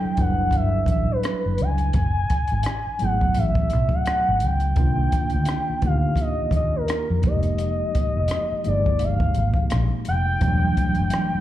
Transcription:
0.00 1.96 F#3 medium
0.00 0.16 G3 medium
0.00 0.17 D4 medium
0.00 0.18 E4 medium
0.00 1.95 A4 loud
0.00 1.96 C5 soft
0.00 0.22 G5 loud
0.05 muted fingered electric bass stroke soft
0.16 0.47 F#1 medium
0.16 1.25 G3 medium
0.16 1.25 D4 medium
0.16 1.26 E4 medium
0.16 1.26 F#4 medium
0.16 kick medium
0.16 closed hi-hat soft
0.20 1.27 B4 medium
0.20 0.57 F#5 medium
0.51 0.81 G1 medium
0.51 kick medium
0.51 closed hi-hat medium
0.56 0.90 E5 loud
0.86 1.04 A1 medium
0.86 kick medium
0.86 closed hi-hat medium
0.91 1.13 E5 medium
1.11 1.63 B4 medium
1.23 cross-stick medium
1.23 closed hi-hat medium
1.46 1.57 F#1 medium
1.58 1.89 C#2 medium
1.58 3.05 G#5 loud
1.58 closed hi-hat medium
1.78 closed hi-hat soft
1.93 2.24 F#1 medium
1.93 kick loud
1.93 closed hi-hat medium
2.30 kick medium
2.30 closed hi-hat medium
2.47 closed hi-hat soft
2.52 2.63 G#1 medium
2.63 cross-stick medium
2.63 closed hi-hat medium
2.87 muted fingered electric bass stroke soft
2.99 3.30 G#1 medium
2.99 4.07 F#3 medium
2.99 4.08 A3 medium
2.99 4.09 B3 medium
2.99 4.09 E4 medium
2.99 closed hi-hat soft
3.03 4.10 G#4 medium
3.03 3.40 F#5 medium
3.21 kick medium
3.34 3.73 A1 medium
3.34 3.96 E5 medium
3.34 closed hi-hat medium
3.55 kick medium
3.70 3.89 B1 medium
3.70 closed hi-hat medium
3.89 kick medium
3.94 4.46 F#5 medium
4.06 cross-stick loud
4.06 closed hi-hat medium
4.28 4.40 G#1 medium
4.40 4.72 C#2 medium
4.40 closed hi-hat medium
4.45 5.88 G5 loud
4.60 closed hi-hat soft
4.75 5.06 C2 medium
4.75 5.58 D#3 medium
4.75 5.59 A#3 medium
4.75 5.59 C4 medium
4.75 5.60 D4 medium
4.75 kick loud
4.75 closed hi-hat medium
4.79 5.60 F4 loud
5.12 kick medium
5.12 closed hi-hat medium
5.30 closed hi-hat soft
5.34 5.46 D2 medium
5.45 cross-stick medium
5.45 closed hi-hat medium
5.70 muted fingered electric bass stroke soft
5.82 6.12 D2 medium
5.82 6.91 A#3 medium
5.82 6.91 C4 medium
5.82 6.90 D#4 medium
5.82 6.92 F4 medium
5.82 kick medium
5.82 closed hi-hat soft
5.86 6.92 G4 medium
5.86 6.20 F5 medium
6.16 kick medium
6.16 closed hi-hat medium
6.21 6.52 D#5 medium
6.40 muted fingered electric bass stroke soft
6.51 6.81 D#2 medium
6.51 kick medium
6.51 closed hi-hat medium
6.56 6.77 D#5 medium
6.76 7.25 A#4 medium
6.88 cross-stick loud
6.88 closed hi-hat medium
7.10 7.22 F2 medium
7.23 7.82 F1 medium
7.23 8.37 F3 medium
7.23 8.38 G#3 medium
7.23 8.38 A#3 medium
7.23 8.39 D#4 medium
7.23 8.69 D#5 medium
7.23 kick loud
7.23 closed hi-hat medium
7.27 8.39 G4 medium
7.43 closed hi-hat soft
7.58 closed hi-hat medium
7.95 kick medium
7.95 closed hi-hat medium
8.17 8.28 F1 medium
8.28 cross-stick medium
8.28 closed hi-hat medium
8.52 muted fingered electric bass stroke soft
8.64 8.95 G1 medium
8.64 9.72 F3 medium
8.64 9.73 G#3 medium
8.64 9.73 A#3 medium
8.64 9.74 D#4 medium
8.64 9.05 D5 medium
8.64 closed hi-hat soft
8.68 9.75 G#4 medium
8.86 kick medium
8.99 9.30 G1 medium
8.99 closed hi-hat medium
9.04 9.72 F5 medium
9.20 kick medium
9.34 9.53 G#1 medium
9.34 closed hi-hat medium
9.54 kick medium
9.70 9.89 A#1 medium
9.70 cross-stick medium
9.70 closed hi-hat medium
10.05 10.36 F1 medium
10.05 11.40 G5 medium
10.05 closed hi-hat medium
10.40 10.71 E1 medium
10.40 11.23 E3 medium
10.40 11.23 G3 medium
10.40 11.24 A3 medium
10.40 11.25 D4 medium
10.40 kick loud
10.40 closed hi-hat medium
10.44 11.25 F#3 medium
10.77 kick medium
10.77 closed hi-hat medium
10.95 closed hi-hat soft
10.99 11.10 F#1 medium
11.10 cross-stick medium
11.10 closed hi-hat medium
11.35 muted fingered electric bass stroke soft

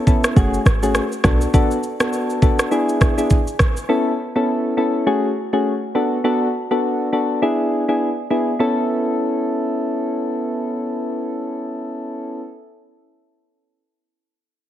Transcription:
0.07 0.34 B3 medium
0.07 0.34 C#4 medium
0.07 0.34 E4 medium
0.07 0.35 A4 medium
0.07 kick medium
0.07 shaker soft
0.24 cross-stick loud
0.24 shaker loud
0.36 0.58 F#1 loud
0.36 0.59 A3 medium
0.36 0.59 C#4 medium
0.36 0.60 F#4 medium
0.36 0.60 G#4 loud
0.36 kick medium
0.36 shaker medium
0.54 shaker medium
0.66 1.00 G#1 medium
0.66 cross-stick medium
0.66 shaker medium
0.83 1.04 A3 medium
0.83 1.04 C#4 medium
0.83 1.04 F#4 medium
0.83 1.04 G#4 medium
0.83 shaker medium
0.95 cross-stick medium
0.95 shaker medium
1.12 shaker medium
1.24 1.46 B1 loud
1.24 1.48 B3 medium
1.24 1.48 D4 medium
1.24 1.48 F#4 medium
1.24 1.48 A4 medium
1.24 kick loud
1.24 cross-stick loud
1.24 shaker soft
1.41 shaker medium
1.54 1.77 B3 medium
1.54 1.77 D4 medium
1.54 1.77 F#4 medium
1.54 1.77 A4 loud
1.54 kick loud
1.54 shaker medium
1.71 shaker medium
1.83 shaker medium
2.00 2.39 B3 medium
2.00 2.39 D4 medium
2.00 2.39 F#4 medium
2.00 2.39 A4 medium
2.00 cross-stick loud
2.00 shaker loud
2.13 shaker medium
2.30 shaker soft
2.42 2.69 B3 medium
2.42 2.70 D4 medium
2.42 2.70 F#4 medium
2.42 2.70 A4 medium
2.42 kick loud
2.42 shaker soft
2.59 cross-stick loud
2.59 shaker loud
2.71 3.14 B3 medium
2.71 3.14 D4 medium
2.71 3.14 E4 medium
2.71 3.14 G#4 loud
2.71 shaker medium
2.89 shaker medium
3.01 kick medium
3.01 cross-stick medium
3.01 shaker medium
3.18 3.39 B3 medium
3.18 3.39 D4 medium
3.18 3.39 E4 medium
3.18 3.39 G#4 medium
3.18 shaker medium
3.30 kick medium
3.30 shaker medium
3.47 shaker medium
3.59 kick loud
3.59 cross-stick loud
3.59 shaker soft
3.77 shaker medium
3.89 4.12 B3 medium
3.89 4.12 C#4 medium
3.89 4.12 E4 medium
3.89 4.13 A4 loud
4.36 4.74 B3 medium
4.36 4.75 C#4 medium
4.36 4.75 E4 medium
4.36 4.75 A4 medium
4.77 5.05 B3 medium
4.77 5.05 C#4 medium
4.77 5.05 E4 medium
4.77 5.05 A4 medium
5.07 5.30 A3 medium
5.07 5.30 C#4 medium
5.07 5.30 F#4 medium
5.07 5.30 G#4 loud
5.53 5.74 A3 medium
5.53 5.74 C#4 medium
5.53 5.74 F#4 medium
5.53 5.74 G#4 medium
5.95 6.18 B3 medium
5.95 6.18 D4 medium
5.95 6.18 F#4 medium
5.95 6.18 A4 medium
6.24 6.48 B3 medium
6.24 6.48 D4 medium
6.24 6.48 F#4 medium
6.24 6.48 A4 loud
6.71 7.10 B3 medium
6.71 7.10 D4 medium
6.71 7.10 F#4 medium
6.71 7.10 A4 medium
7.13 7.40 B3 medium
7.13 7.40 D4 medium
7.13 7.40 F#4 medium
7.13 7.40 A4 medium
7.42 7.84 B3 medium
7.42 7.85 D4 medium
7.42 7.85 E4 medium
7.42 7.85 G#4 loud
7.88 8.09 B3 medium
7.88 8.10 D4 medium
7.88 8.10 E4 medium
7.88 8.10 G#4 medium
8.30 8.54 B3 medium
8.30 8.54 D4 medium
8.30 8.54 E4 medium
8.30 8.54 G#4 medium
8.59 12.41 B3 medium
8.59 12.41 C#4 medium
8.59 12.41 E4 medium
8.59 12.41 A4 loud

